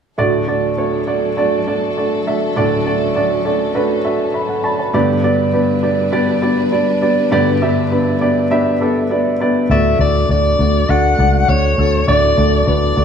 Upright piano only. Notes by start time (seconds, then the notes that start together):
0.18 D2 A2 A3 D4 F#4 D5
0.47 A3 D4 F#4 D5
0.77 A3 D4 F#4 C#5
1.07 A3 D4 F#4 D5
1.37 A3 D4 F#4 D5
1.67 A3 D4 F#4 D5
1.97 A3 D4 F#4 D5
2.26 A3 D4 F#4 E5
2.56 D2 A2 A3 D4 F#4 D5
2.86 A3 D4 F#4 D5
3.15 A3 D4 F#4 D5
3.45 A3 D4 F#4 D5
3.74 A3 D4 F#4 B4
4.04 A3 D4 F#4 E5
4.34 E5 B5
4.49 A4 F#5
4.64 D5 A5 B5
4.79 C#5 A5
4.93 G2 D3 B3 D4 G4 D5
5.23 B3 D4 G4 D5
5.53 B3 D4 G4 B4
5.82 B3 D4 G4 D5
6.12 B3 D4 G4 D5
6.42 B3 D4 G4 D5
6.72 B3 D4 G4 D5
7.02 B3 D4 G4 D5
7.31 G2 D3 B3 D4 G4 D5
7.61 B3 D4 G4 E5
7.91 B3 D4 G4 B4
8.20 B3 D4 G4 D5
8.51 B3 D4 G4 E5
8.80 B3 D4 G4 A4
9.10 B3 D4 G4 D5
9.40 B3 D4 G4 D5
9.70 A2 A3 D4 F#4 D5
10.00 A3 D4 F#4 D5
10.29 A3 D4 F#4 D5
10.59 A3 D4 F#4 D5
10.89 A3 D4 F#4 D5
11.19 A3 D4 F#4 D5
11.48 A3 D4 F#4 D5
11.78 A3 D4 F#4 A4
12.07 A2 A3 D4 F#4 D5
12.37 A3 D4 F#4 D5
12.67 A3 D4 F#4 B4
12.96 A3 D4 F#4 D5